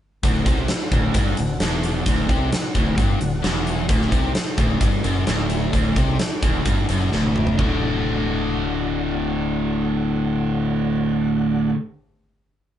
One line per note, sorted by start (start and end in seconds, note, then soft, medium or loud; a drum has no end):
0.23 0.45 D1 medium
0.23 0.46 D2 loud
0.23 3.86 D4 medium
0.23 3.86 F#4 medium
0.23 3.86 A4 medium
0.23 3.86 F#5 medium
0.23 kick loud
0.23 closed hi-hat medium
0.46 0.68 C2 medium
0.46 0.69 C3 medium
0.46 kick loud
0.46 closed hi-hat medium
0.68 muted overdriven electric guitar stroke medium
0.68 muted distorted electric guitar stroke medium
0.68 muted fingered electric bass stroke soft
0.68 snare loud
0.68 closed hi-hat loud
0.92 1.13 D1 loud
0.92 1.14 D2 loud
0.92 kick loud
0.92 closed hi-hat medium
1.14 1.36 G1 loud
1.14 1.38 G2 medium
1.14 kick loud
1.14 closed hi-hat loud
1.37 1.59 D1 medium
1.37 1.57 D2 medium
1.37 closed hi-hat medium
1.60 2.03 E1 medium
1.60 2.06 E2 loud
1.60 snare loud
1.60 closed hi-hat medium
1.83 closed hi-hat medium
2.06 2.28 D1 medium
2.06 2.29 D2 medium
2.06 kick loud
2.06 closed hi-hat medium
2.29 2.50 C2 medium
2.29 2.52 C3 medium
2.29 kick medium
2.29 closed hi-hat medium
2.52 muted overdriven electric guitar stroke medium
2.52 muted distorted electric guitar stroke medium
2.52 muted fingered electric bass stroke soft
2.52 snare loud
2.52 closed hi-hat loud
2.75 2.97 D1 medium
2.75 2.98 D2 loud
2.75 kick medium
2.75 closed hi-hat medium
2.98 3.19 G1 medium
2.98 3.20 G2 loud
2.98 kick loud
2.98 closed hi-hat medium
3.21 3.43 D1 medium
3.21 3.39 D2 medium
3.21 closed hi-hat medium
3.43 3.86 E1 loud
3.43 3.88 E2 medium
3.43 snare loud
3.43 closed hi-hat medium
3.67 closed hi-hat medium
3.87 4.11 D1 medium
3.87 4.12 D2 loud
3.87 7.55 D4 medium
3.87 7.55 F#4 medium
3.87 7.54 A4 medium
3.87 kick loud
3.87 closed hi-hat medium
4.01 snare soft
4.12 4.34 C2 loud
4.12 4.35 C3 medium
4.12 kick medium
4.12 closed hi-hat medium
4.34 muted overdriven electric guitar stroke medium
4.34 muted distorted electric guitar stroke medium
4.34 muted fingered electric bass stroke soft
4.34 snare loud
4.34 closed hi-hat medium
4.58 4.80 D1 medium
4.58 4.80 D2 loud
4.58 kick loud
4.58 closed hi-hat medium
4.80 5.03 G1 medium
4.80 5.03 G2 loud
4.80 kick loud
4.80 closed hi-hat loud
5.04 5.26 F#1 medium
5.04 5.26 F#2 medium
5.04 closed hi-hat medium
5.26 5.71 D1 loud
5.26 5.71 D2 medium
5.26 snare loud
5.26 closed hi-hat medium
5.50 closed hi-hat medium
5.73 5.95 D1 medium
5.73 5.96 D2 loud
5.73 kick medium
5.73 closed hi-hat medium
5.96 6.18 C2 medium
5.96 6.19 C3 loud
5.96 kick medium
5.96 closed hi-hat medium
6.19 muted overdriven electric guitar stroke medium
6.19 muted distorted electric guitar stroke medium
6.19 muted fingered electric bass stroke soft
6.19 snare loud
6.19 closed hi-hat loud
6.43 6.64 D1 medium
6.43 6.65 D2 loud
6.43 kick loud
6.43 closed hi-hat medium
6.65 6.88 G1 medium
6.65 6.88 G2 loud
6.65 kick loud
6.65 closed hi-hat medium
6.88 7.11 F#1 medium
6.88 7.11 F#2 loud
6.88 closed hi-hat medium
7.11 7.56 D1 medium
7.11 7.56 D2 medium
7.11 snare medium
7.24 high tom medium
7.36 mid tom medium
7.47 floor tom medium
7.57 11.71 D1 medium
7.57 11.73 D2 medium
7.57 11.74 A2 medium
7.57 11.75 D3 loud
7.57 11.76 A3 medium
7.57 11.71 D4 medium
7.57 11.71 F#4 medium
7.57 11.77 F#4 loud
7.57 11.71 A4 medium
7.57 11.71 F#5 medium
7.57 kick medium
7.57 floor tom loud